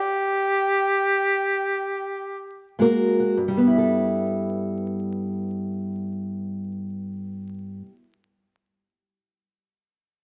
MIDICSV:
0, 0, Header, 1, 3, 480
1, 0, Start_track
1, 0, Tempo, 500000
1, 9825, End_track
2, 0, Start_track
2, 0, Title_t, "Harmonica"
2, 0, Program_c, 0, 22
2, 0, Note_on_c, 0, 67, 88
2, 2664, Note_off_c, 0, 67, 0
2, 9825, End_track
3, 0, Start_track
3, 0, Title_t, "Steel-string acoustic guitar"
3, 0, Program_c, 1, 25
3, 2676, Note_on_c, 1, 44, 76
3, 2684, Note_on_c, 1, 56, 58
3, 2694, Note_on_c, 1, 66, 58
3, 2699, Note_on_c, 1, 58, 59
3, 2705, Note_on_c, 1, 70, 67
3, 3058, Note_off_c, 1, 66, 0
3, 3070, Note_on_c, 1, 66, 58
3, 3212, Note_off_c, 1, 44, 0
3, 3229, Note_off_c, 1, 56, 0
3, 3236, Note_off_c, 1, 66, 0
3, 3237, Note_on_c, 1, 43, 60
3, 3241, Note_off_c, 1, 70, 0
3, 3260, Note_off_c, 1, 58, 0
3, 3341, Note_on_c, 1, 55, 65
3, 3429, Note_on_c, 1, 59, 63
3, 3526, Note_on_c, 1, 64, 54
3, 3627, Note_on_c, 1, 69, 50
3, 7502, Note_off_c, 1, 43, 0
3, 7606, Note_off_c, 1, 55, 0
3, 7695, Note_off_c, 1, 59, 0
3, 7792, Note_off_c, 1, 64, 0
3, 7892, Note_off_c, 1, 69, 0
3, 9825, End_track
0, 0, End_of_file